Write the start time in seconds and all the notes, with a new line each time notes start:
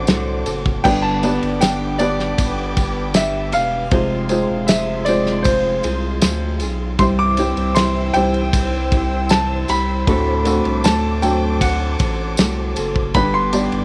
Already playing: A2 C4 D4 F#4 A4 C5 D5 F#5 D6
0.07 C2 D3 A3 C4 F#4 A4, snare, ride, tambourine
0.46 F#1 C4 F#4 A4, ride, tambourine
0.66 kick
0.84 G1 G2 D3 G3 B3 D4 G4 B4 D5 G5 D6, kick, crash, tambourine
1.02 A5
1.23 G3 B3 D4 G4 B4 D5, ride, tambourine
1.43 G1, ride
1.61 G1 G2 D3 G3 B3 D4 G4 G5, snare, ride, tambourine
1.98 B3 D4 G4 B4 D5, ride, tambourine
2.19 snare
2.38 G1 G3 B3 D4 G4, kick, ride, tambourine
2.77 G3 B3 D4 G4, kick, ride, tambourine
3.14 G2 D3 G3 B3 D4 G4 E5, snare, ride, tambourine
3.52 E1 G3 B3 D4 G4 F5, ride, tambourine
3.91 F1 C3 F3 G#3 C4 F4 G#4 C5 C6, kick, ride
4.29 G#3 C4 F4 G#4 C5, ride, tambourine
4.50 E1
4.67 F1 F3 C4 F4 E5, snare, ride, tambourine
4.71 G#4
5.05 G#3 C4 F4 G#4 C5 D5, ride, tambourine
5.26 snare
5.43 F3 C5, kick, ride, tambourine
5.47 C4 F4 G#4
5.83 C2 C4 F4 G#4, ride, tambourine
6.22 D2 F3 C4 F4 G#4, snare, ride, tambourine
6.60 B1 F4 G#4, ride, tambourine
6.64 C4
6.99 C2 G2 C3 E3 G3 C4 E4 G4 C5 G5 C6 E6, kick, ride, tambourine
7.19 D6
7.37 G3 C4 E4 G4 C5, ride, tambourine
7.57 C2, ride
7.75 C3 E3 C4 E4 G4 C6, snare, ride, tambourine
8.14 C2 G3 C4 E4 G4 C5 G5, ride, tambourine
8.34 ride
8.53 C2 E3 C4 E4 G4, kick, ride, tambourine
8.92 C4 E4 G4, kick, ride
9.29 C3 E3 C4 E4 G4 A5, snare, ride, tambourine
9.68 C2 C4 E4 G4 B5, ride, tambourine
10.07 D2 A2 D3 A3 C4 D4 F#4 A4 A5 D6, kick, ride
10.44 A3 C4 D4 F#4 A4, ride, tambourine
10.49 C4
10.65 C2, ride
10.84 D2 D3 A3 C4 A4 A5, snare, ride, tambourine
11.22 F#3 A3 C4 D4 A4 G5, ride, tambourine
11.61 A3 C4 F#4 A4 F#5, kick, ride, tambourine
11.99 A1 C4 F#4 A4, kick, ride, tambourine
12.37 C2 D3 A3 C4 F#4 A4, snare, ride, tambourine
12.76 F#1 C4 F#4 A4, ride, tambourine
12.96 kick
13.14 G1 G2 D3 G3 B3 D4 G4 B4 G5 B5 D6, kick, ride, tambourine
13.34 C6
13.52 G3 B3 D4 G4 D5, ride, tambourine
13.72 G1, ride